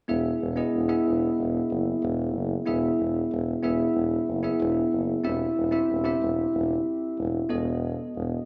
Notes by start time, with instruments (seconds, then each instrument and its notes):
0.08 tuba E1, tine electric piano B3 E4 G#4 E5
0.41 tuba E1
0.56 tine electric piano B3 E4 G#4 D#5
0.73 tuba E1
0.88 tine electric piano B3 E4 G#4 E5
1.05 tuba E1
1.38 tuba E1
1.70 tuba F#1
2.02 tuba E1
2.34 tuba F#1
2.66 tuba E1, tine electric piano B3 E4 G#4 E5
2.99 tuba E1
3.31 tuba E1
3.63 tuba E1, tine electric piano B3 E4 G#4 E5
3.95 tuba E1
4.27 tuba F#1
4.43 tine electric piano B3 E4 G#4 E5
4.60 tuba E1
4.92 tuba F#1
5.24 tuba E1, tine electric piano C4 E4 G4 E5
5.57 tuba E1
5.71 tine electric piano C4 E4 G4 E5
5.90 tuba E1
6.04 tine electric piano C4 E4 G4 E5
6.21 tuba E1
6.54 tuba E1
7.18 tuba E1
7.49 tuba E1, tine electric piano B3 F#4 A4 D#5
8.15 tuba E1